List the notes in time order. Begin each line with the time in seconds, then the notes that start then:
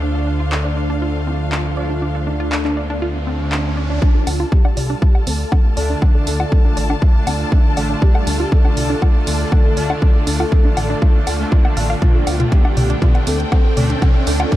Already playing: D2 D3 A3 D4 F4 A4 C5 F5
0.02 D4, riser
0.15 A4
0.27 D4
0.40 F4
0.52 D4, clap
0.65 D4
0.77 D5
0.90 D4
1.02 F4
1.27 C4 F4
1.52 D4, clap
1.77 D3 A3 D4 D5
1.90 D4
2.02 D4
2.15 A4
2.27 D4
2.40 F4
2.52 D4, clap
2.65 D4, clap
2.77 D5
2.90 D4
3.02 F4
3.27 C4
3.40 D3 A3 D4
3.52 D4, clap
3.77 D5
3.90 D4
4.02 D4 F4 A4 D5 A5, kick, riser
4.15 A4
4.27 D2 D4, open hi-hat, low woodblock
4.40 F4
4.52 D4 G4, kick
4.65 D4, low woodblock
4.77 C2 D5, open hi-hat
4.90 D4
5.02 F4, kick
5.15 low woodblock
5.27 D2 C4 A4, open hi-hat
5.52 D4, kick, low woodblock
5.77 D2 D3 A3 D4 D5, open hi-hat
5.90 D4
6.02 D4, kick, low woodblock
6.15 A4
6.27 D2 D4 A4, open hi-hat
6.40 F4, low woodblock
6.52 D4, kick
6.65 D4
6.77 A1 D5, open hi-hat
6.90 D4, low woodblock
7.02 F4, kick
7.27 D2 C4, open hi-hat, low woodblock
7.52 D4, kick
7.77 A1 D3 A3 D4 D5, open hi-hat, low woodblock
7.90 D4
8.02 D4 G4, kick
8.15 A4, low woodblock
8.27 D2 D4, open hi-hat
8.40 F4
8.52 D4 A4, kick
8.65 D4, low woodblock
8.77 C2 D5, open hi-hat
8.90 D4
9.02 F4, kick, low woodblock
9.27 D2 C4 A4, open hi-hat
9.52 D4, kick, low woodblock
9.77 D2 D3 A3 D4 D5, open hi-hat
9.90 D4, low woodblock
10.02 D4, kick
10.15 A4
10.27 D2 D4 A4, open hi-hat
10.40 F4, low woodblock
10.52 D4, kick
10.65 D4
10.77 A1 D5, open hi-hat, low woodblock
10.90 D4
11.02 F4, kick
11.27 D2 A4, open hi-hat, low woodblock
11.40 D3 A3 D4
11.52 F4, kick
11.65 low woodblock
11.77 A1 F5, open hi-hat
11.90 F5
12.02 D4 F4 G5, kick, closed hi-hat, mid tom
12.15 A4
12.27 D2 D4, open hi-hat, low woodblock
12.40 F4, closed hi-hat, mid tom
12.52 D4 G4, kick, closed hi-hat
12.65 D4, low woodblock
12.77 C2 D5, open hi-hat, mid tom
12.90 D4, closed hi-hat
13.02 F4, kick, closed hi-hat, mid tom
13.15 closed hi-hat, low woodblock
13.27 D2 C4 A4, open hi-hat
13.40 closed hi-hat
13.52 D4, kick, closed hi-hat, low woodblock
13.77 D2 D3 A3 D4 D5, open hi-hat, mid tom
13.90 D4, closed hi-hat
14.02 D4, kick, closed hi-hat, mid tom, low woodblock
14.15 A4
14.27 D2 D4 A4, open hi-hat
14.40 F4, low woodblock
14.52 D4, kick, closed hi-hat